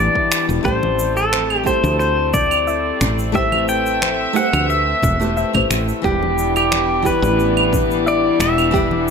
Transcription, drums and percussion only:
0.15 kick medium
0.32 finger snap medium
0.32 shaker medium
0.50 shaker soft
0.65 kick loud
0.65 shaker soft
0.83 high conga loud
0.99 shaker medium
1.17 shaker soft
1.33 finger snap medium
1.33 high conga medium
1.33 shaker soft
1.50 claves medium
1.66 kick medium
1.66 shaker medium
1.84 high conga loud
1.84 shaker soft
2.00 shaker soft
2.33 kick loud
2.33 high conga medium
2.33 low conga medium
2.33 shaker medium
2.51 claves medium
2.51 shaker soft
2.68 shaker soft
3.01 finger snap medium
3.01 high conga medium
3.01 low conga medium
3.01 shaker medium
3.19 shaker soft
3.35 kick loud
3.35 shaker soft
3.52 high conga medium
3.52 claves medium
3.69 shaker medium
3.86 shaker soft
4.02 finger snap medium
4.02 high conga medium
4.02 shaker soft
4.36 shaker medium
4.53 high conga medium
4.53 claves medium
4.53 shaker soft
4.70 shaker soft
5.02 kick medium
5.02 high conga medium
5.02 low conga medium
5.02 shaker medium
5.21 shaker soft
5.37 shaker soft
5.55 kick medium
5.55 low conga medium
5.55 claves medium
5.71 finger snap medium
5.71 high conga medium
5.71 shaker medium
5.89 shaker soft
6.04 kick loud
6.04 shaker soft
6.23 high conga medium
6.38 shaker medium
6.56 claves medium
6.56 shaker soft
6.72 finger snap medium
6.72 high conga medium
6.72 shaker soft
7.05 kick medium
7.05 shaker medium
7.23 high conga loud
7.23 shaker soft
7.40 shaker soft
7.57 claves medium
7.73 kick medium
7.73 high conga medium
7.73 low conga medium
7.73 shaker medium
7.91 shaker soft
8.07 shaker soft
8.40 finger snap medium
8.40 high conga medium
8.40 low conga medium
8.40 shaker medium
8.58 claves medium
8.58 shaker soft
8.74 kick loud
8.74 shaker soft
8.91 high conga medium

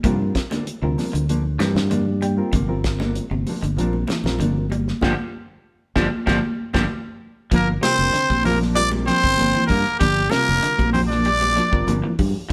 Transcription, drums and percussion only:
0.04 kick medium
0.04 closed hi-hat medium
0.04 low conga medium
0.35 kick medium
0.35 snare medium
0.35 closed hi-hat soft
0.51 snare soft
0.51 closed hi-hat medium
0.51 high conga medium
0.67 closed hi-hat medium
0.98 snare soft
0.98 open hi-hat medium
0.98 high conga medium
1.15 closed hi-hat medium
1.29 closed hi-hat medium
1.60 snare medium
1.60 closed hi-hat soft
1.60 high conga medium
1.76 snare medium
1.76 low conga medium
1.91 closed hi-hat medium
1.91 high conga medium
1.91 low conga medium
2.21 closed hi-hat medium
2.21 high conga medium
2.53 kick medium
2.53 closed hi-hat medium
2.53 low conga medium
2.84 kick medium
2.84 snare medium
2.84 closed hi-hat soft
3.00 snare soft
3.00 high conga medium
3.15 closed hi-hat medium
3.31 high conga medium
3.47 open hi-hat medium
3.47 high conga medium
3.64 closed hi-hat soft
3.78 closed hi-hat medium
3.93 high conga medium
4.07 snare medium
4.07 closed hi-hat soft
4.07 high conga medium
4.24 snare medium
4.24 low conga medium
4.39 closed hi-hat medium
4.39 high conga medium
4.39 low conga medium
4.70 closed hi-hat soft
4.70 high conga medium
4.88 snare soft
5.01 kick medium
5.01 snare medium
5.01 high conga medium
5.96 kick medium
5.96 snare medium
5.96 high conga medium
6.27 kick medium
6.27 snare medium
6.27 high conga medium
6.74 kick medium
6.74 snare medium
6.74 high conga medium
7.52 kick medium
7.52 closed hi-hat medium
7.83 snare medium
7.83 closed hi-hat soft
7.83 high conga loud
8.14 closed hi-hat medium
8.14 high conga soft
8.30 kick medium
8.30 closed hi-hat soft
8.30 high conga medium
8.44 open hi-hat medium
8.44 high conga medium
8.44 low conga medium
8.62 snare soft
8.75 closed hi-hat medium
8.75 high conga soft
8.91 high conga loud
9.08 snare soft
9.08 closed hi-hat medium
9.24 kick medium
9.37 closed hi-hat medium
9.37 high conga medium
9.53 high conga medium
9.68 kick medium
9.68 open hi-hat medium
9.68 low conga medium
9.86 closed hi-hat soft
9.99 kick loud
9.99 closed hi-hat medium
9.99 high conga soft
10.30 snare medium
10.30 closed hi-hat medium
10.30 high conga loud
10.63 closed hi-hat medium
10.63 high conga soft
10.78 kick medium
10.78 closed hi-hat soft
10.78 high conga medium
10.94 open hi-hat medium
10.94 high conga medium
10.94 low conga medium
11.11 snare soft
11.25 closed hi-hat medium
11.41 closed hi-hat soft
11.41 high conga medium
11.57 snare soft
11.57 closed hi-hat medium
11.73 kick medium
11.87 closed hi-hat medium
11.87 high conga medium
12.19 kick medium
12.19 open hi-hat medium
12.19 low conga medium

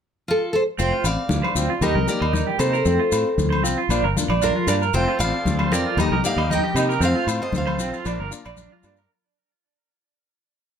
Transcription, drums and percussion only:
0.79 muted conga soft
0.79 maracas medium
1.05 low agogo medium
1.05 maracas medium
1.29 high conga medium
1.29 maracas medium
1.44 low agogo medium
1.56 muted conga soft
1.56 maracas medium
1.82 muted conga soft
1.82 high conga medium
1.82 low agogo medium
1.82 maracas medium
2.08 muted conga soft
2.08 maracas medium
2.22 low agogo medium
2.33 high conga medium
2.33 maracas medium
2.59 low agogo medium
2.59 maracas medium
2.74 maracas soft
2.86 muted conga soft
2.86 maracas medium
3.12 low agogo medium
3.12 maracas medium
3.38 high conga medium
3.38 maracas medium
3.52 low agogo medium
3.65 maracas medium
3.90 muted conga soft
3.90 low agogo medium
3.90 maracas medium
4.17 muted conga soft
4.17 high conga medium
4.17 maracas loud
4.30 low agogo medium
4.42 high conga medium
4.42 maracas medium
4.68 low agogo medium
4.68 maracas medium
4.83 maracas soft
4.94 muted conga soft
4.94 maracas medium
5.20 low agogo medium
5.20 maracas medium
5.46 high conga medium
5.46 maracas medium
5.59 low agogo medium
5.72 muted conga soft
5.72 maracas medium
5.98 muted conga soft
5.98 high conga medium
5.98 low agogo medium
5.98 maracas medium
6.24 muted conga soft
6.24 maracas medium
6.38 low agogo medium
6.50 high conga medium
6.50 maracas medium
6.76 low agogo medium
6.76 maracas medium
6.91 maracas soft
7.02 muted conga soft
7.02 maracas medium
7.28 low agogo medium
7.28 maracas medium
7.53 high conga medium
7.53 maracas medium
7.67 low agogo medium
7.79 muted conga soft
7.79 maracas medium
7.94 maracas soft
8.05 muted conga soft
8.05 low agogo medium
8.05 maracas medium
8.32 muted conga soft
8.32 maracas medium
8.45 low agogo medium
8.45 maracas soft
8.56 high conga medium
8.56 maracas medium
8.83 low agogo medium
8.83 maracas medium
8.97 maracas soft

